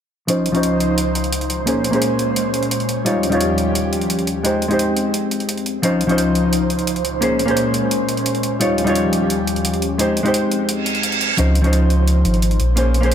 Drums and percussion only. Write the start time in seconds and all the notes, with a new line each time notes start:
0.28 closed hi-hat
0.46 closed hi-hat
0.55 closed hi-hat
0.63 closed hi-hat
0.80 closed hi-hat
0.98 closed hi-hat
1.15 closed hi-hat
1.24 closed hi-hat
1.33 closed hi-hat
1.41 closed hi-hat
1.50 closed hi-hat
1.67 closed hi-hat
1.84 closed hi-hat
1.93 closed hi-hat
2.02 closed hi-hat
2.19 closed hi-hat
2.36 closed hi-hat
2.54 closed hi-hat
2.63 closed hi-hat
2.71 closed hi-hat
2.80 closed hi-hat
2.89 closed hi-hat
3.06 closed hi-hat
3.23 closed hi-hat
3.32 closed hi-hat
3.41 closed hi-hat
3.58 closed hi-hat
3.75 closed hi-hat
3.93 closed hi-hat
4.01 closed hi-hat
4.10 closed hi-hat
4.19 closed hi-hat
4.27 closed hi-hat
4.45 closed hi-hat
4.62 closed hi-hat
4.71 closed hi-hat
4.79 closed hi-hat
4.97 closed hi-hat
5.14 closed hi-hat
5.31 closed hi-hat
5.40 closed hi-hat
5.49 closed hi-hat
5.58 closed hi-hat
5.66 closed hi-hat
5.83 closed hi-hat
6.01 closed hi-hat
6.09 closed hi-hat
6.18 closed hi-hat
6.35 closed hi-hat
6.53 closed hi-hat
6.70 closed hi-hat
6.79 closed hi-hat
6.87 closed hi-hat
6.96 closed hi-hat
7.05 closed hi-hat
7.22 closed hi-hat
7.39 closed hi-hat
7.48 closed hi-hat
7.57 closed hi-hat
7.74 closed hi-hat
7.91 closed hi-hat
8.09 closed hi-hat
8.17 closed hi-hat
8.26 closed hi-hat
8.35 closed hi-hat
8.43 closed hi-hat
8.61 closed hi-hat
8.78 closed hi-hat
8.87 closed hi-hat
8.95 closed hi-hat
9.13 closed hi-hat
9.30 closed hi-hat
9.47 closed hi-hat
9.56 closed hi-hat
9.65 closed hi-hat
9.74 closed hi-hat
9.82 closed hi-hat
9.99 closed hi-hat
10.17 closed hi-hat
10.26 closed hi-hat
10.34 closed hi-hat
10.52 closed hi-hat
10.69 closed hi-hat
10.86 closed hi-hat
10.95 closed hi-hat
11.03 closed hi-hat
11.12 closed hi-hat
11.21 closed hi-hat
11.38 closed hi-hat
11.55 closed hi-hat
11.64 closed hi-hat
11.73 closed hi-hat
11.90 closed hi-hat
12.08 closed hi-hat
12.25 closed hi-hat
12.34 closed hi-hat
12.42 closed hi-hat
12.51 closed hi-hat
12.60 closed hi-hat
12.77 closed hi-hat
12.94 closed hi-hat
13.03 closed hi-hat